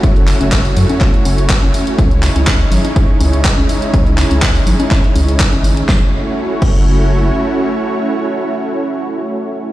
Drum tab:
CC |----------------|----------------|----------------|------x---------|
HH |xxoxxooxxxoxxxox|xxoxxxoxx-oxx-ox|xxoxxooxxxoxxxox|----------------|
CP |--x-x---x---x---|--x-x-------x---|--x-x---x---x---|----------------|
SD |----------------|----------------|----------------|o---------------|
CG |o--o--Oo--o--o--|o--o--Oo--o--o--|o--o--Oo--o--o--|----------------|
BD |o---o---o---o---|o---o---o---o---|o---o---o---o---|o-----o---------|

CC |----------------|
HH |----------------|
CP |----------------|
SD |----------------|
CG |----------------|
BD |----------------|